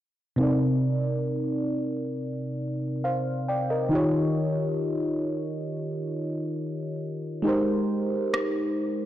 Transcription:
0.36 3.87 C3 medium
0.36 3.87 C4 medium
0.36 3.88 D#4 medium
0.41 3.01 A#4 medium
0.41 3.01 D5 medium
3.04 3.46 C5 medium
3.04 3.46 F5 medium
3.48 3.69 D5 medium
3.48 3.69 G5 medium
3.70 4.12 A#4 soft
3.70 4.12 D#5 medium
3.89 7.39 D#3 medium
3.89 7.40 D#4 medium
3.89 7.41 F4 medium
3.94 7.42 G4 medium
3.94 7.43 C#5 medium
7.42 9.05 G#3 medium
7.42 9.05 D#4 medium
7.42 9.05 G4 medium
7.47 9.05 A#4 medium
7.47 9.05 C5 medium
8.34 cross-stick loud

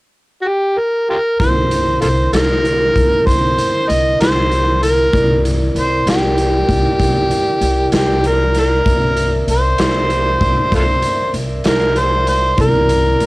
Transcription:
0.42 0.49 F#4 soft
0.47 0.80 G4 medium
0.79 1.09 A#4 medium
1.10 1.17 F4 soft
1.10 1.17 G4 soft
1.10 1.38 A#4 medium
1.40 1.98 C2 medium
1.40 5.10 D3 medium
1.40 5.10 E4 medium
1.40 5.10 A#4 medium
1.40 1.98 C5 medium
1.40 kick loud
1.40 closed hi-hat medium
1.71 closed hi-hat medium
2.01 2.31 C2 medium
2.01 2.07 F4 soft
2.01 2.08 A4 soft
2.01 2.31 C5 medium
2.01 closed hi-hat soft
2.33 2.91 C2 medium
2.33 3.22 A#4 medium
2.33 snare loud
2.33 closed hi-hat medium
2.65 closed hi-hat soft
2.96 3.10 C2 medium
2.96 kick medium
2.96 closed hi-hat medium
3.26 3.55 C2 medium
3.26 3.90 C5 medium
3.26 kick medium
3.26 closed hi-hat medium
3.58 closed hi-hat medium
3.89 4.18 C2 medium
3.89 4.20 D#5 medium
3.89 closed hi-hat medium
4.20 5.09 C2 medium
4.20 4.78 C5 medium
4.20 snare loud
4.20 closed hi-hat medium
4.51 closed hi-hat soft
4.83 5.41 A#4 medium
4.83 closed hi-hat medium
5.13 5.71 C2 medium
5.13 8.82 E4 medium
5.13 8.82 A#4 medium
5.13 8.83 D5 medium
5.13 kick medium
5.13 closed hi-hat medium
5.45 closed hi-hat medium
5.75 6.04 C2 medium
5.75 6.06 C5 medium
5.75 closed hi-hat soft
6.06 6.64 C2 medium
6.06 7.90 G4 medium
6.06 snare medium
6.06 closed hi-hat medium
6.38 closed hi-hat medium
6.68 6.83 C2 medium
6.68 kick medium
6.68 closed hi-hat medium
7.00 7.28 C2 medium
7.00 kick medium
7.00 closed hi-hat medium
7.31 closed hi-hat medium
7.61 7.90 C2 medium
7.61 closed hi-hat medium
7.92 8.82 C2 medium
7.92 8.28 G4 medium
7.92 snare loud
7.92 closed hi-hat medium
8.24 8.56 A#4 medium
8.24 closed hi-hat medium
8.54 snare soft
8.54 closed hi-hat medium
8.59 9.46 A#4 medium
8.84 9.44 C2 medium
8.84 12.55 A#4 medium
8.84 12.55 D5 medium
8.84 12.54 E5 medium
8.84 kick loud
8.84 closed hi-hat medium
9.17 closed hi-hat medium
9.48 9.76 C2 medium
9.48 10.70 C5 medium
9.48 closed hi-hat medium
9.78 10.37 C2 medium
9.78 snare loud
9.78 closed hi-hat medium
10.10 closed hi-hat soft
10.41 10.55 C2 medium
10.41 kick medium
10.41 closed hi-hat soft
10.72 11.01 C2 medium
10.72 10.83 F4 medium
10.72 10.83 A4 medium
10.72 11.32 C5 medium
10.72 kick medium
10.72 closed hi-hat medium
11.02 closed hi-hat medium
11.34 11.63 C2 medium
11.34 closed hi-hat soft
11.64 12.54 C2 medium
11.64 snare loud
11.64 closed hi-hat medium
11.68 11.99 A#4 medium
11.96 12.28 C5 medium
11.96 closed hi-hat soft
12.27 12.57 C5 medium
12.27 closed hi-hat medium
12.57 13.17 C2 medium
12.57 13.26 E4 medium
12.57 13.26 A#4 medium
12.57 13.26 D5 medium
12.57 kick loud
12.57 closed hi-hat medium
12.61 13.26 A#4 medium
12.89 closed hi-hat medium
13.20 13.26 C2 medium
13.20 closed hi-hat medium

